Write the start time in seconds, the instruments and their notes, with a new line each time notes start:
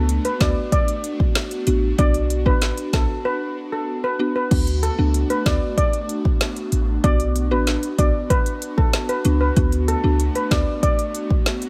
Already playing: 808-style bass C#2, analog synth pad A3 B3 D4 F#4, synth pluck B3 D4 F#4
0.09 closed hi-hat
0.25 steel pan B4, closed hi-hat
0.40 808-style bass D2, synth pluck B3 D4 F#4, steel pan D5, kick, snare, closed hi-hat
0.72 steel pan D5, kick, closed hi-hat
0.88 closed hi-hat
1.04 closed hi-hat
1.20 kick
1.35 snare, closed hi-hat
1.51 closed hi-hat
1.67 808-style bass A1, synth pluck B3 D4 F#4, closed hi-hat
1.98 808-style bass B1, synth pluck B3 D4 F#4, analog synth pad D4, steel pan D5, kick, closed hi-hat
2.14 closed hi-hat
2.30 closed hi-hat
2.46 808-style bass A1, synth pluck B3 D4 F#4, steel pan B4, kick
2.62 snare, closed hi-hat
2.77 closed hi-hat
2.93 808-style bass B1, synth pluck B3 D4 F#4, steel pan A4, kick, snare, closed hi-hat
3.25 steel pan B4
3.72 steel pan A4
4.04 steel pan B4
4.19 synth pluck B3 D4 F#4
4.36 steel pan B4
4.51 808-style bass D2, analog synth pad A3 B3 D4 F#4, synth pluck B3 D4 F#4, kick, closed hi-hat, crash
4.67 closed hi-hat
4.83 steel pan A4, closed hi-hat
4.98 808-style bass C#2, synth pluck B3 D4 F#4
5.14 closed hi-hat
5.30 steel pan B4, closed hi-hat
5.46 808-style bass D2, synth pluck B3 D4 F#4, steel pan D5, kick, snare, closed hi-hat
5.78 steel pan D5, kick, closed hi-hat
5.93 closed hi-hat
6.09 closed hi-hat
6.25 kick
6.41 snare, closed hi-hat
6.56 closed hi-hat
6.72 808-style bass A1, closed hi-hat
7.04 808-style bass B1, synth pluck B3 D4 F#4, analog synth pad D4 F#4, steel pan D5, kick, closed hi-hat
7.20 closed hi-hat
7.36 closed hi-hat
7.51 808-style bass A1, synth pluck B3 D4 F#4, steel pan B4
7.67 snare, closed hi-hat
7.83 closed hi-hat
7.98 808-style bass B1, synth pluck B3 D4 F#4, steel pan D5, kick, closed hi-hat
8.30 steel pan B4, kick, closed hi-hat
8.46 closed hi-hat
8.62 closed hi-hat
8.78 steel pan A4, kick
8.93 snare, closed hi-hat
9.09 steel pan B4, closed hi-hat
9.25 808-style bass C#2, synth pluck B3 D4 F#4, closed hi-hat
9.41 steel pan B4
9.56 808-style bass D2, analog synth pad A3 D4, synth pluck B3 D4 F#4, kick, closed hi-hat
9.72 closed hi-hat
9.88 steel pan A4, closed hi-hat
10.04 808-style bass C#2, synth pluck B3 D4 F#4
10.20 closed hi-hat
10.35 steel pan B4, closed hi-hat
10.51 808-style bass D2, synth pluck B3 D4 F#4, steel pan D5, kick, snare, closed hi-hat
10.83 steel pan D5, kick, closed hi-hat
10.99 closed hi-hat
11.15 closed hi-hat
11.30 kick
11.46 snare, closed hi-hat
11.62 closed hi-hat